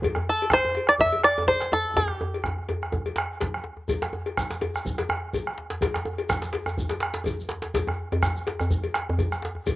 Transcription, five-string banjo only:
0.29 0.51 A4 medium
0.53 0.87 C5 medium
0.89 0.94 D5 medium
1.01 1.23 E5 loud
1.24 1.46 D5 medium
1.48 1.73 C5 medium
1.73 1.97 A4 medium
1.97 2.41 G4 medium

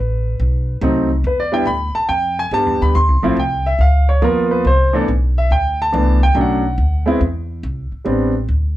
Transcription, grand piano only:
0.00 0.80 B4 medium
0.81 1.08 F#3 medium
0.81 1.08 A3 medium
0.81 1.08 C4 medium
0.81 1.09 D#4 medium
1.27 1.39 B4 medium
1.40 1.53 D5 medium
1.52 1.65 G3 medium
1.52 1.65 B3 medium
1.52 1.65 D4 medium
1.52 1.66 E4 medium
1.52 1.67 G5 medium
1.67 1.95 B5 medium
1.95 2.09 A5 medium
2.09 2.37 G5 medium
2.39 2.52 G#5 loud
2.52 2.95 G3 medium
2.52 2.95 B3 medium
2.52 2.95 D4 medium
2.52 2.95 G4 medium
2.52 2.81 A5 loud
2.82 2.95 B5 medium
2.95 3.34 C6 loud
3.23 3.36 F3 medium
3.23 3.36 A3 medium
3.23 3.36 C4 medium
3.23 3.36 E4 medium
3.40 3.66 G5 medium
3.66 3.80 E5 medium
3.81 4.08 F5 medium
4.09 4.22 C#5 medium
4.22 4.65 F3 medium
4.22 4.65 A#3 medium
4.22 4.65 B3 medium
4.22 4.65 F4 medium
4.22 4.51 A#4 medium
4.51 4.65 B4 medium
4.67 4.94 C5 medium
4.93 5.06 E3 medium
4.93 5.06 A3 medium
4.93 5.07 B3 medium
4.93 5.07 D4 medium
4.93 5.03 A4 medium
5.38 5.51 E5 medium
5.52 5.79 G5 medium
5.82 6.20 A5 medium
5.92 6.19 E3 medium
5.92 6.19 A3 medium
5.92 6.19 B3 medium
5.92 6.19 D4 medium
6.23 6.36 G5 medium
6.34 6.61 F#3 medium
6.34 6.61 A3 medium
6.34 6.61 C#4 soft
6.34 6.62 D4 medium
6.41 7.06 F#5 medium
7.06 7.19 G#3 medium
7.06 7.19 B3 medium
7.06 7.19 C4 medium
7.06 7.20 E4 medium
8.05 8.31 G3 medium
8.05 8.31 B3 soft
8.05 8.32 C4 medium
8.05 8.32 D4 medium

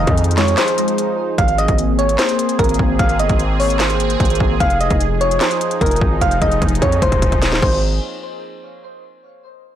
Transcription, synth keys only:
0.00 0.15 D#5 medium
0.38 0.55 C#5 medium
0.58 1.34 C5 medium
1.38 1.56 F5 loud
1.58 1.76 D#5 medium
1.99 2.16 C#5 medium
2.19 2.57 C5 medium
2.59 2.77 A#4 medium
2.99 3.17 F5 loud
3.20 3.37 D#5 medium
3.60 3.78 C#5 medium
3.80 4.56 C5 medium
4.60 4.78 F5 medium
4.81 4.98 D#5 medium
5.21 5.39 C#5 medium
5.41 5.79 C5 medium
5.81 5.99 A#4 medium
6.21 6.39 F5 loud
6.42 6.60 D#5 medium
6.82 7.00 C#5 medium
7.02 7.59 C5 medium
7.62 7.81 C5 medium

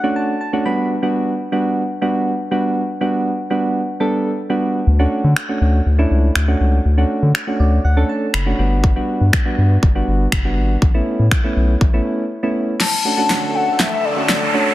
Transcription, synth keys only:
0.00 0.34 A3 medium
0.00 0.34 C#4 medium
0.00 0.34 D4 medium
0.00 0.34 F#4 loud
0.00 0.14 F#5 medium
0.16 0.39 A5 medium
0.41 0.64 A5 medium
0.53 0.65 A3 medium
0.53 0.65 C#4 medium
0.53 0.64 D4 medium
0.53 0.65 F#4 loud
0.65 0.95 G3 medium
0.65 0.95 B3 medium
0.65 0.95 D4 medium
0.65 0.95 F#4 loud
0.65 0.89 B5 medium
1.02 1.33 G3 medium
1.02 1.33 B3 medium
1.02 1.33 D4 medium
1.02 1.33 F#4 loud
1.52 1.82 G3 medium
1.52 1.82 B3 medium
1.52 1.82 D4 medium
1.52 1.83 F#4 loud
2.02 2.32 G3 medium
2.02 2.32 B3 medium
2.02 2.32 D4 medium
2.02 2.32 F#4 loud
2.51 2.81 G3 medium
2.51 2.82 B3 medium
2.51 2.82 D4 medium
2.51 2.82 F#4 loud
3.01 3.31 G3 medium
3.01 3.31 B3 medium
3.01 3.31 D4 medium
3.01 3.31 F#4 loud
3.50 3.81 G3 medium
3.50 3.81 B3 medium
3.50 3.81 D4 medium
3.50 3.81 F#4 medium
4.00 4.30 G3 medium
4.00 4.30 B3 medium
4.00 4.30 D4 medium
4.00 4.31 A4 loud
4.50 4.80 G3 medium
4.50 4.80 B3 medium
4.50 4.80 D4 medium
4.50 4.80 F#4 loud
4.99 5.29 A3 medium
4.99 5.30 C#4 medium
4.99 5.30 D4 medium
4.99 5.30 F#4 loud
5.49 5.79 A3 medium
5.49 5.79 C#4 medium
5.49 5.79 D4 medium
5.49 5.79 F#4 medium
5.98 6.29 A3 medium
5.98 6.29 C#4 medium
5.98 6.29 D4 medium
5.98 6.29 E4 loud
6.48 6.78 A3 medium
6.48 6.78 C#4 medium
6.48 6.78 D4 medium
6.48 6.78 F#4 loud
6.98 7.28 A3 medium
6.98 7.28 C#4 medium
6.98 7.28 D4 medium
6.98 7.28 F#4 loud
7.47 7.77 A3 medium
7.47 7.77 C#4 medium
7.47 7.78 D4 medium
7.47 7.78 F#4 loud
7.60 7.83 D5 medium
7.85 8.08 F#5 medium
7.97 8.27 A3 medium
7.97 8.27 C#4 medium
7.97 8.27 D4 medium
7.97 8.27 A4 loud
8.09 8.32 A5 medium
8.34 8.80 B5 medium
8.46 8.59 A3 medium
8.46 8.59 C#4 medium
8.46 8.58 D4 medium
8.46 8.58 F#4 loud
8.59 8.88 G3 medium
8.59 8.89 B3 medium
8.59 8.89 D4 medium
8.59 8.89 F#4 loud
8.96 9.26 G3 medium
8.96 9.26 B3 medium
8.96 9.26 D4 medium
8.96 9.26 F#4 loud
9.45 9.76 G3 medium
9.45 9.76 B3 medium
9.45 9.76 D4 medium
9.45 9.76 F#4 loud
9.95 10.25 G3 medium
9.95 10.25 B3 medium
9.95 10.26 D4 medium
9.95 10.26 F#4 loud
10.45 10.75 G3 medium
10.45 10.75 B3 medium
10.45 10.75 D4 medium
10.45 10.75 F#4 loud
10.94 11.24 A3 medium
10.94 11.25 B3 medium
10.94 11.25 C#4 medium
10.94 11.25 E4 loud
11.44 11.74 A3 medium
11.44 11.74 B3 medium
11.44 11.74 C#4 medium
11.44 11.74 E4 loud
11.93 12.24 A3 medium
11.93 12.24 B3 medium
11.93 12.24 C#4 medium
11.93 12.24 E4 loud
12.43 12.73 A3 medium
12.43 12.73 B3 medium
12.43 12.73 C#4 medium
12.43 12.73 E4 loud
13.05 13.13 A3 medium
13.05 13.13 C#4 medium
13.05 13.13 D4 medium
13.05 13.13 F#4 medium
13.17 13.78 A3 medium
13.17 13.78 C#4 medium
13.17 13.78 D4 medium
13.17 13.78 F#4 medium
14.16 14.39 A3 medium
14.16 14.39 C#4 medium
14.16 14.39 D4 medium
14.16 14.39 F#4 medium
14.54 14.74 A3 medium
14.54 14.74 C#4 medium
14.54 14.74 D4 medium
14.54 14.74 F#4 medium

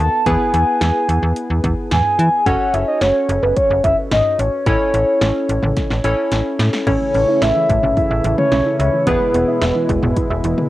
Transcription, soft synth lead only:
0.00 0.28 A5 loud
0.26 0.53 G#5 loud
0.54 1.60 G#5 loud
1.91 2.48 G#5 loud
2.46 2.75 F#5 loud
2.74 2.87 E5 loud
2.88 3.01 D#5 medium
3.02 3.44 C#5 loud
3.43 3.56 B4 medium
3.56 3.82 C#5 medium
3.84 3.96 E5 medium
4.12 4.41 D#5 medium
4.39 6.32 C#5 loud
6.87 7.43 C#5 loud
7.42 7.96 E5 loud
7.97 8.35 E5 loud
8.38 8.76 C#5 loud
8.80 9.09 C#5 medium
9.07 10.17 B4 medium

